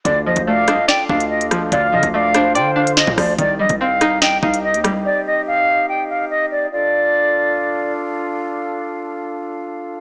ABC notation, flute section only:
X:1
M:4/4
L:1/8
Q:1/4=144
K:Dphr
V:1 name="Flute section"
[DFAf]8- | [DFAf]8 | [CEGe]8- | [CEGe]8 |
[DFAf]8- | [DFAf]8 |]